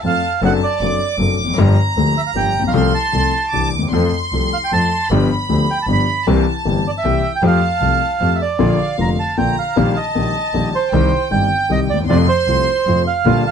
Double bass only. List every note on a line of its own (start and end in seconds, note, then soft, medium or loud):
0.04 0.20 F2 medium
0.42 0.58 F#1 medium
0.81 0.96 F#1 medium
1.19 1.35 F#1 medium
1.39 1.56 F1 soft
1.57 1.73 G1 medium
1.97 2.13 D2 medium
2.35 2.51 G1 medium
2.55 2.74 A#1 soft
2.75 2.91 C2 medium
3.14 3.30 C2 medium
3.53 3.70 C2 medium
3.73 3.92 D#2 soft
3.92 4.09 F2 medium
4.32 4.49 C2 medium
4.72 4.88 F2 medium
5.11 5.27 G1 medium
5.50 5.65 D2 medium
5.87 6.03 G1 medium
6.27 6.43 C2 medium
6.66 6.81 G1 medium
7.04 7.20 C2 medium
7.42 7.58 F2 medium
7.81 7.97 C2 medium
8.20 8.37 F2 medium
8.60 8.76 A#1 medium
9.00 9.16 F1 medium
9.38 9.55 A#1 medium
9.77 9.93 A#1 medium
10.16 10.32 A#1 medium
10.53 10.70 A#1 medium
10.93 11.09 C2 loud
11.32 11.47 G1 medium
11.70 11.86 C2 medium
11.89 12.08 D#2 medium
12.09 12.25 F2 medium
12.47 12.63 C2 medium
12.86 13.03 F2 medium
13.25 13.42 A#1 medium